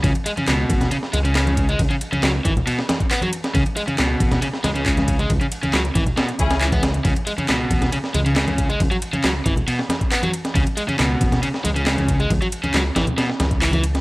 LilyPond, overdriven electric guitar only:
\new Staff \with { instrumentName = "Overdriven electric guitar" } { \clef bass \time 4/4 \key cis \minor \tempo 4 = 137 cis16 r16 gis16 cis16 b,4 cis16 r16 gis16 cis16 cis8. gis16 | r16 cis16 r16 cis16 fis16 r16 e16 r16 b,16 r8. b16 fis16 r8 | cis16 r16 gis16 cis16 b,4 cis16 r16 gis16 cis16 cis8. gis16 | r16 cis16 r16 cis16 fis16 r16 e16 r16 b,16 r8. e16 b16 r8 |
cis16 r16 gis16 cis16 b,4 cis16 r16 gis16 cis16 cis8. gis16 | r16 fis16 r16 cis16 fis16 r16 e16 r16 b,16 r8. b16 fis16 r8 | cis16 r16 gis16 cis16 b,4 cis16 r16 gis16 cis16 cis8. gis16 | r16 fis16 r16 cis16 fis16 r16 e16 r16 b,16 r8. e16 e16 r8 | }